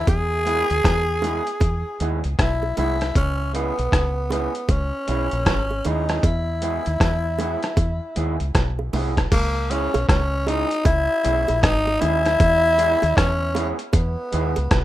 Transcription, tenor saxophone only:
0.09 G#4
2.40 E4
2.78 E4
3.17 C#4
3.55 B3
4.32 B3
4.71 C#4
5.87 D#4
6.25 E4
9.33 A#3
9.71 C#4
10.09 C#4
10.48 D#4
10.86 E4
11.63 D#4
12.01 E4
13.17 C#4
13.94 B3

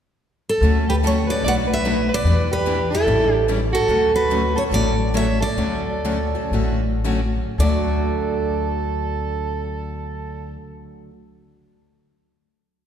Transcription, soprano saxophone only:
0.89 G4
1.03 A4
1.27 B4
1.44 D5
1.67 B4
2.09 B4
2.51 G4
2.90 E4
3.30 D4
3.73 F#4
4.14 F#4
4.56 A4
4.69 A4
5.14 C#5
5.40 A4
7.59 A4

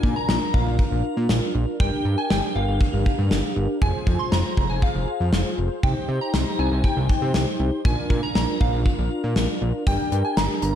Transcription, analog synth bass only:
0.03 A#2
0.29 A#1
0.54 A#1
0.67 A#1
0.92 A#1
1.17 A#2
1.30 A#1
1.55 A#1
1.80 G1
2.05 G2
2.30 G1
2.56 G1
2.68 G1
2.93 G1
3.19 G2
3.31 G1
3.56 G1
3.82 F1
4.07 F2
4.32 F1
4.57 F1
4.70 F1
4.95 F1
5.20 F2
5.33 F1
5.58 F1
5.83 C2
6.09 C3
6.34 C2
6.59 C2
6.72 C2
6.97 C2
7.22 C3
7.35 C2
7.60 C2
7.85 A#1
8.10 A#2
8.35 A#1
8.61 A#1
8.73 A#1
8.98 A#1
9.24 A#2
9.36 A#1
9.62 A#1
9.87 G1
10.12 G2
10.37 G1
10.62 G1

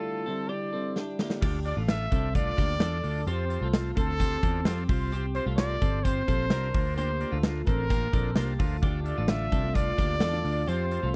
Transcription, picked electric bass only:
1.43 D2
1.77 A1
2.12 C2
2.59 D2
2.80 E2
3.04 D2
3.27 F2
3.61 C2
3.97 D2
4.43 E2
4.65 F2
4.89 C2
5.46 C2
5.82 G1
6.28 A#1
6.51 C2
6.74 D2
7.33 D2
7.68 A1
8.14 A#1
8.37 C2
8.60 D2
8.83 D2
9.18 A1
9.52 C2
9.98 D2
10.22 E2
10.45 D2
10.68 F2
11.03 C2

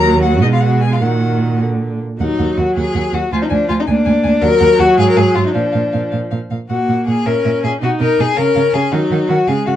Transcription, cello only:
Already playing: D#2
0.42 B2
1.01 A#2
2.20 D#2
2.39 D#2
2.58 D#2
2.77 D#2
2.95 D#2
3.13 D#2
3.32 D2
3.51 D2
3.69 D2
3.88 D2
4.06 D2
4.24 D2
4.42 D#2
4.61 D#2
4.80 D#2
4.98 G#2
5.17 G#2
5.36 G#2
5.55 A#2
5.74 A#2
5.94 A#2
6.13 A#2
6.31 A#2
6.51 A#2
6.70 A#2
6.89 A#2
7.07 A#2
7.26 A#2
7.45 A#2
7.64 A#2
7.82 B2
8.00 B2
8.19 B2
8.38 C#3
8.56 C#3
8.74 C#3
8.92 D#3
9.11 D#3
9.29 D#3
9.48 C#3
9.68 C#3

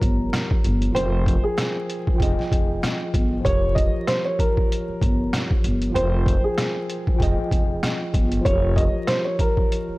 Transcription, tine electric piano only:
Already playing: F3 F4 G4 A#4 C#5
0.90 F3 F4
0.95 A#4 G5
0.99 C5
2.14 F3 F4
2.18 G#4 G5
2.23 D#5
3.40 F3 F4
3.45 G4 A#4
3.49 C#5
5.90 F3 F4
5.94 A#4 G5
5.99 C5
7.14 F3 F4
7.18 G#4 G5
7.23 D#5
8.41 F3 F4
8.45 G4 A#4
8.49 C#5

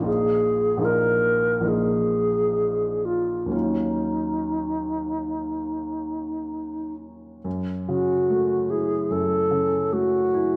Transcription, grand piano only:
0.00 A#1 F3 A#3 D#4
0.04 F4
0.77 A#1 F3 A#3
0.81 D#4 F4
1.60 A#1 F3 A#3
1.65 D#4 F4
3.46 D#2 F#3 A#3
3.50 C#4 F4
7.44 F#2
7.88 C#3
8.30 A3
8.71 E4
9.10 F#2
9.51 C#3
9.93 A3
10.34 E4

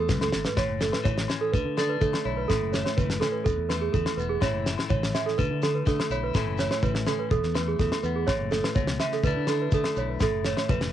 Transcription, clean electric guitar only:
Already playing: A3 E4
0.09 F#2
0.33 G#2
0.57 A2
0.81 A3
1.04 E3
1.29 C#4
1.55 D3
1.79 D4
2.01 A3
2.26 E4
2.51 A2
2.76 A3
2.99 E3
3.23 C#4
3.47 E2
3.71 A3
3.95 E3
4.20 B3
4.42 A2 E3 A3 C#4 E4
4.67 A3
4.89 E3
5.15 C#4
5.39 D3
5.86 A3
6.11 E4
6.35 A2 E3 A3 C#4 E4
6.60 A3
6.83 E3
7.07 C#4
7.30 E2
7.55 A3
7.80 E3
8.05 B3
8.28 A2
8.52 A3
8.76 B2
9.02 C#3
9.25 D3 A3 D4 E4
9.51 D4
9.74 A3
9.99 E4
10.23 A2
10.47 A3
10.70 E3

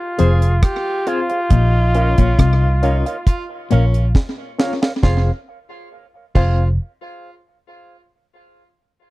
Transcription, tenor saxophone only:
0.19 G#4
0.63 F4
1.51 D#4
2.18 C#4
2.39 D#4
2.83 D#4
3.27 F4
3.71 C#4
5.03 F4
6.35 F4

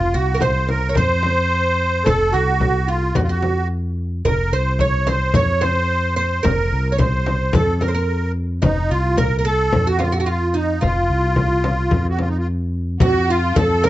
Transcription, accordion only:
Already playing: F4
0.14 F#4
0.41 C5
0.68 A#4
0.96 C5
2.04 A4
2.32 F#4
2.87 F4
3.15 F#4
3.23 F4
3.31 F#4
4.27 A#4
4.53 C5
4.81 C#5
5.09 C5
5.35 C#5
5.61 C5
6.16 C5
6.43 A#4
6.92 C#5
6.99 C5
7.55 A4
7.81 A#4
8.63 D#4
8.89 F4
9.18 A#4
9.38 A#4
9.46 A4
9.88 F#4
10.00 F4
10.16 F#4 A4
10.22 F#4
10.29 F4
10.56 D#4
10.84 F4
12.09 F#4
12.20 F4
12.28 D#4
12.39 F4
13.03 F#4
13.30 F4
13.57 A4
13.84 A#4

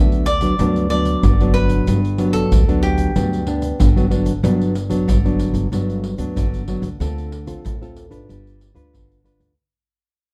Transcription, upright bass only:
Already playing: D2
0.60 D2
1.23 G1
1.88 G1
2.52 D2
3.16 D2
3.80 G1
4.44 G1
5.08 G1
5.54 G1
5.72 G1
6.18 D2
6.36 G1
6.82 D2
7.00 D2
7.65 D2
8.11 G#1
8.29 G1
8.75 D2
8.94 G1
9.40 D2

